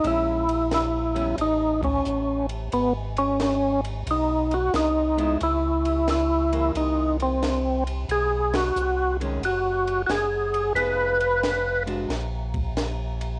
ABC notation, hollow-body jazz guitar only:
X:1
M:4/4
L:1/8
Q:"Swing" 1/4=90
K:Abdor
V:1 name="Hollow-body jazz guitar"
[A,D_F] z2 [=G,CD] z4 | z6 z [A,C_F] | z3 [_F,B,]3 z2 | z3 [^D,^G,^C] z4 |
[F,CEA] z2 [A,=DG] z4 |]